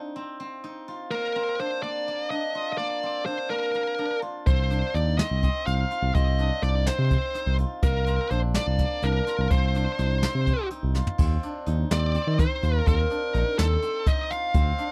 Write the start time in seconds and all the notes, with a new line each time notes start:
Already playing: C4 D#4 F4
0.16 C4
0.40 C4
0.64 D#4
0.88 F4
1.11 A#3 A#4
1.36 C4
1.60 D4 C5
1.83 A#3 D5
2.08 A#3
2.30 D4 D#5
2.55 F4
2.72 D#5
2.78 A#3 D5
3.03 C4
3.26 D4 C5
3.50 A#3 A#4
3.75 A#3
3.99 D4
4.22 F4
4.46 C2 C4 C5, kick, closed hi-hat
4.70 D4, closed hi-hat
4.94 D#2 D#4 D5, closed hi-hat
5.18 C4 D#5, snare, closed hi-hat
5.31 C2
5.43 C4, kick, closed hi-hat
5.66 C2 D#4 F5, closed hi-hat
5.91 F4, closed hi-hat
6.02 C2
6.15 C2 C4 D#5, kick, closed hi-hat
6.39 D4, closed hi-hat
6.62 C2 D#4 D5, closed hi-hat
6.87 C4 C5, snare, closed hi-hat
6.99 C3
7.11 C4, kick, closed hi-hat
7.34 D#4, snare, closed hi-hat
7.46 C2
7.58 F4, closed hi-hat
7.83 C2 A#3 A#4, kick, closed hi-hat
8.06 C4, closed hi-hat
8.31 A#1 D4 C5, closed hi-hat
8.54 A#3 D5, snare, closed hi-hat
8.67 C2
8.78 A#3, kick, snare, closed hi-hat
9.02 C2 D4 A#4, closed hi-hat
9.27 F4, snare, closed hi-hat
9.39 C2
9.51 C2 C4 C5, kick, closed hi-hat
9.75 D4, closed hi-hat
9.99 C2 D#4, snare, closed hi-hat
10.23 C4, snare, closed hi-hat
10.35 C3
10.47 C4, kick, closed hi-hat
10.71 D#4, closed hi-hat
10.83 C2
10.95 F4, snare
11.07 floor tom
11.18 D#2 C4, kick, crash
11.43 D4, closed hi-hat
11.66 D#2 D#4, closed hi-hat
11.91 D#2 C4 D5, snare, closed hi-hat
12.15 C4, closed hi-hat
12.27 D#3
12.38 D#4 C5, kick, closed hi-hat
12.63 D#2 F4, closed hi-hat
12.86 D#2 C4 A#4, kick, closed hi-hat
13.10 D4, closed hi-hat
13.34 A#1 D#4, closed hi-hat
13.58 D#2 C4 A4, snare, closed hi-hat
13.82 C4, closed hi-hat
14.06 D#4 D#5, kick, closed hi-hat
14.30 F4 F5, closed hi-hat
14.54 D2 C4, kick, closed hi-hat
14.78 D4, closed hi-hat